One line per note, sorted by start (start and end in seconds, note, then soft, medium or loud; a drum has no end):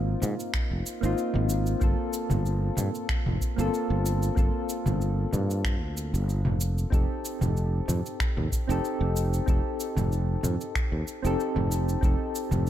0.00 0.14 G#1 medium
0.00 1.01 A#3 medium
0.00 1.03 C4 medium
0.00 1.04 D#4 medium
0.00 1.05 F4 loud
0.22 0.34 G#2 medium
0.22 mid tom medium
0.22 cabasa medium
0.40 cabasa soft
0.54 finger snap medium
0.54 kick loud
0.54 cabasa soft
0.71 0.81 F1 medium
0.86 cabasa medium
1.01 1.13 G#1 loud
1.01 1.77 A#3 medium
1.01 1.78 C4 medium
1.01 1.79 D#4 medium
1.01 cabasa soft
1.05 1.79 F4 medium
1.18 cabasa soft
1.34 1.74 G#1 loud
1.34 mid tom medium
1.49 cabasa medium
1.66 cabasa soft
1.80 1.93 G1 loud
1.80 3.53 A#3 medium
1.80 3.54 C4 medium
1.80 3.54 F4 medium
1.80 3.55 A4 medium
1.80 kick loud
1.80 cabasa soft
2.13 cabasa medium
2.30 2.69 G1 medium
2.30 mid tom medium
2.30 cabasa soft
2.46 cabasa soft
2.77 2.89 G2 medium
2.77 mid tom medium
2.77 cabasa medium
2.95 cabasa soft
3.09 finger snap medium
3.09 kick loud
3.09 cabasa soft
3.26 3.36 F1 medium
3.26 mid tom medium
3.41 kick medium
3.41 cabasa medium
3.56 3.68 G1 loud
3.56 4.32 A#3 medium
3.56 4.33 C4 medium
3.56 4.34 F4 medium
3.56 cabasa soft
3.60 4.34 A4 loud
3.74 cabasa soft
3.90 4.29 G1 loud
4.06 cabasa medium
4.23 cabasa soft
4.35 4.48 G1 loud
4.35 6.09 A#3 medium
4.35 6.09 C4 medium
4.35 6.10 F4 medium
4.35 6.11 A4 medium
4.35 kick loud
4.35 cabasa soft
4.69 cabasa medium
4.86 5.25 G1 medium
4.86 mid tom medium
4.86 cabasa soft
5.01 cabasa soft
5.33 5.82 G2 medium
5.33 mid tom medium
5.33 cabasa medium
5.51 cabasa soft
5.64 finger snap medium
5.64 kick loud
5.64 cabasa soft
5.82 6.15 D2 medium
5.97 cabasa medium
6.14 6.46 G1 medium
6.14 cabasa soft
6.29 cabasa soft
6.45 6.84 F1 medium
6.45 mid tom medium
6.61 cabasa medium
6.78 cabasa soft
6.90 7.04 F1 loud
6.90 8.64 C4 medium
6.90 8.65 D#4 medium
6.90 8.65 G4 medium
6.90 kick loud
6.90 cabasa soft
6.94 8.66 A4 medium
7.25 cabasa medium
7.41 7.80 F1 medium
7.41 mid tom medium
7.41 cabasa soft
7.57 cabasa soft
7.88 7.99 F2 medium
7.88 mid tom medium
7.88 cabasa medium
8.06 cabasa soft
8.20 finger snap medium
8.20 kick loud
8.20 cabasa soft
8.37 8.47 D#2 medium
8.37 mid tom medium
8.52 kick medium
8.52 cabasa medium
8.67 8.79 F1 loud
8.67 9.43 C4 medium
8.67 9.44 D#4 medium
8.67 9.45 G4 medium
8.67 9.45 A4 loud
8.67 cabasa soft
8.85 cabasa soft
9.01 9.39 F1 loud
9.16 cabasa medium
9.34 cabasa soft
9.46 9.59 F1 loud
9.46 11.19 C4 medium
9.46 11.20 D#4 medium
9.46 11.21 G4 medium
9.46 11.21 A4 medium
9.46 kick loud
9.46 cabasa soft
9.80 cabasa medium
9.97 10.35 F1 medium
9.97 mid tom medium
9.97 cabasa soft
10.12 cabasa soft
10.43 10.55 F2 medium
10.43 mid tom medium
10.43 cabasa medium
10.61 cabasa soft
10.75 finger snap medium
10.75 kick loud
10.75 cabasa soft
10.92 11.02 D#2 medium
11.08 cabasa medium
11.22 11.34 F1 loud
11.22 11.98 C4 medium
11.22 11.99 D#4 medium
11.22 12.00 G4 medium
11.22 cabasa soft
11.26 12.00 A4 loud
11.40 cabasa soft
11.56 11.95 F1 loud
11.56 mid tom medium
11.72 cabasa medium
11.89 cabasa soft
12.01 12.14 F1 loud
12.01 12.70 C4 medium
12.01 12.70 D#4 medium
12.01 12.70 G4 medium
12.01 12.70 A4 medium
12.01 kick loud
12.01 cabasa soft
12.35 cabasa medium
12.51 12.70 F1 medium
12.51 mid tom medium
12.51 cabasa soft